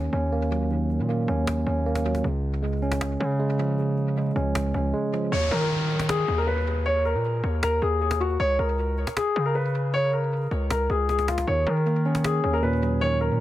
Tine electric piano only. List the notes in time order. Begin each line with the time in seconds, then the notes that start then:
Already playing: D#3 A#3 C#4
0.13 C#4
0.32 A#3
0.51 F#3
0.71 D#3
1.09 A#3
1.29 C#4
1.67 C#4
1.86 A#3
2.05 F#3
2.24 C#3
2.62 G#3
2.82 C#4
3.20 C#4
3.39 G#3
3.59 F3
3.78 C#3
4.17 G#3
4.36 C#4
4.74 C#4
4.94 G#3
5.13 F3
11.47 D#3
11.86 A#3
12.06 C#4
12.44 C#4
12.63 A#2
12.82 F#3
13.02 D#3